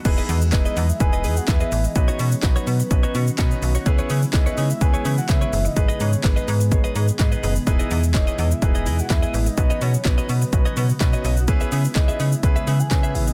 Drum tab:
CC |x---------------|----------------|----------------|----------------|
HH |x-o-x-o-x-o-x-o-|x-o-x-o-x-o-x-o-|x-o-x-o-x-o-x-o-|x-o-x-o-x-o-x-o-|
SH |xxxxxxxxxxxxxxxx|xxxxxxxxxxxxxxxx|xxxxxxxxxxxxxxxx|xxxxxxxxxxxxxxxx|
CP |----x-------x---|----x-------x---|----x-------x---|----x-------x---|
SD |----o-------o---|----o-------o---|----o-------o---|----o-------o---|
BD |o---o---o---o---|o---o---o---o---|o---o---o---o---|o---o---o---o---|

CC |----------------|----------------|----------------|
HH |x-o-x-o-x-o-x-o-|x-o-x-o-x-o-x-o-|x-o-x-o-x-o-x-o-|
SH |xxxxxxxxxxxxxxxx|xxxxxxxxxxxxxxxx|xxxxxxxxxxxxxxxx|
CP |----x-------x---|----x-------x---|----x-------x---|
SD |----o-------o---|----o-------o---|----o-------o---|
BD |o---o---o---o---|o---o---o---o---|o---o---o---o---|